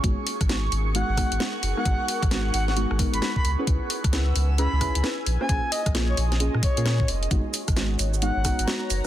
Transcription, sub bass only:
X:1
M:4/4
L:1/16
Q:"Swing 16ths" 1/4=132
K:G#m
V:1 name="Sub bass" clef=bass
G,,, z2 G,,,3 G,,,3 G,,,2 G,,, z2 F,,, z | G,,, z2 G,,,3 G,,,3 G,,,2 G,,, z2 C,, z | C,, z2 C,,3 C,,3 C,,2 C,, z2 A,,, z | A,,, z2 A,,,3 A,,,3 A,, z A,,3 ^E,,,2 |
G,,, z2 G,,,3 G,,,3 G,,,2 G,,, z2 F,,, z |]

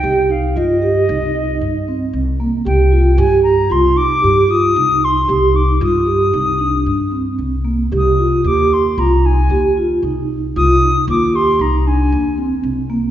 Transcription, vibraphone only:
X:1
M:5/4
L:1/8
Q:1/4=114
K:Cm
V:1 name="Vibraphone"
G E F G E E2 C2 B, | G F G2 F E G F E2 | G E F G E D2 C2 B, | G F G2 F E G F E2 |
F E F G E D2 C2 B, |]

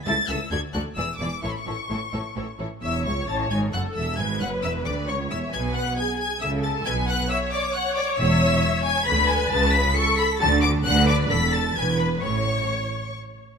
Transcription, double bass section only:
X:1
M:3/4
L:1/8
Q:1/4=133
K:A
V:1 name="Double bass section" clef=bass
C,, C,, D,, D,, E,,, E,,, | A,,, A,,, A,,, A,,, A,,, A,,, | E,,, C,, A,,, G,,, F,,, E,,, | G,,, F,,, E,,, D,, C,, E,,, |
B,,,2 z2 C,,2 | B,,,2 z4 | E,,,2 z2 D,,2 | C,,2 z2 D,,2 |
D,,2 E,,,2 E,,,2 | A,,,2 z4 |]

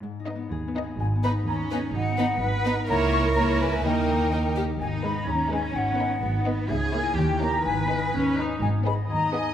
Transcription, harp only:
X:1
M:2/4
L:1/8
Q:1/4=126
K:G#m
V:1 name="Harp"
(3G,, D B, (3G B, G | (3G,, B, D (3G B G | (3G,, B, D (3B D B | (3C, C E (3A c A |
(3D, D A (3D d A | (3G,, B, D (3G B G | (3G,, B, D (3B D B | (3C, C [EA] (3D, C [DA] |
(3G,, B, D (3G B G | (3G,, B, D (3G B G |]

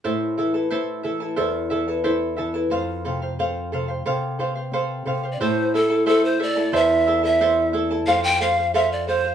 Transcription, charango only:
X:1
M:2/4
L:1/16
Q:1/4=90
K:Am
V:1 name="Charango"
[EAcea]2 [EAea] [EAa] [EAcea]2 [EAea] [EAa] | [EAcea]2 [EAea] [EAa] [EAcea]2 [EAea] [EAa] | [Acf]2 [Acf] [cf] [Acf]2 [Acf] [cf] | [Acf]2 [Acf] [cf] [Acf]2 [Acf] [cf] |
[EAcea]2 [EAea] [EAa] [EAcea]2 [EAea] [EAa] | [EAcea]2 [EAea] [EAa] [EAcea]2 [EAea] [EAa] | [Acf]2 [Acf] [cf] [Acf]2 [Acf] [cf] |]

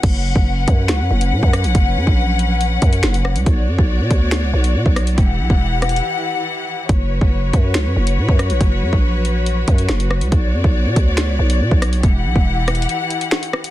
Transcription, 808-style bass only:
X:1
M:4/4
L:1/16
Q:1/4=140
K:F#phr
V:1 name="808-style bass" clef=bass
F,,,3 F,,,3 F,,2 C,, F,, F,,,2 ^A,, F,,2 ^A,,, | F,,,2 F,, ^A,,,6- A,,, F,,2 F,,,3 C,, | B,,,2 F,, B,,,2 B,, D,,3 C,, B,,,2 B,, B,,,3 | E,,,2 B,,, E,,,4- E,,, z8 |
F,,,3 F,,,3 F,,2 C,, F,, F,,,2 ^A,, F,,2 ^A,,, | F,,,2 F,, ^A,,,6- A,,, F,,2 F,,,3 C,, | B,,,2 F,, B,,,2 B,, D,,3 C,, B,,,2 B,, B,,,3 | E,,,2 B,,, E,,,4- E,,, z8 |]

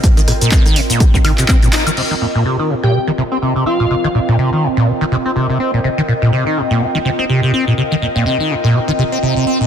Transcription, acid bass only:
X:1
M:4/4
L:1/16
Q:"Swing 16ths" 1/4=124
K:Cm
V:1 name="Acid bass" clef=bass
C, E, B,, B,, C, E, C, B,, C, E, E, C, C B,, E E, | C, E, B,, B,, C, E, C, B,, C, E, C, C C, C, C B,, | C, E, B,, B,, C, E, C, B,, C, E, C, C C, C, C B,, | C, E, B,, B,, C, E, C, B,, C, E, C, C C, C, C B,, |
C, E, B,, B,, C, E, C, B,, C, E, C, C C, C, C B,, |]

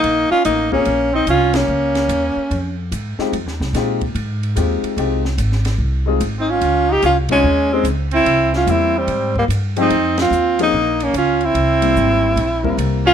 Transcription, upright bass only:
X:1
M:4/4
L:1/8
Q:"Swing" 1/4=146
K:Fm
V:1 name="Upright bass" clef=bass
B,,, z =A,,,2 B,,,2 C,,2 | D,,2 E,, z F,,2 A,, z | (3F,, E,, C,, B,,2 A,,2 E,, z | C,,2 A,,,2 C,,2 A,,,2 |
D,,2 C,,2 E,,2 D,,2 | C,,2 =E,,2 A,,2 G,,2 | F,,2 E,,2 B,,,2 D,,2 | C,,2 A,,,2 B,,,2 C,,2 |]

